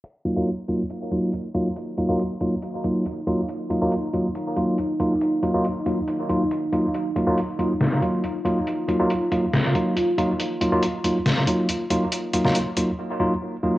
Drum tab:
HH |x-x-x-x-x-x-x-x-|x-x-x-x-x-x-x-x-|x-x-x-x-x-x-x-x-|x-x-x-x-x-x-x-x-|
SD |----------------|----------------|----------------|----------------|

HH |x-x-x-x-x-x-x-x-|x-x-x-x-x-x-x-x-|x-x-x-x-x-x-x-x-|x-x-x-x---------|
SD |--------o-------|--------o-------|--------o-------|---o------------|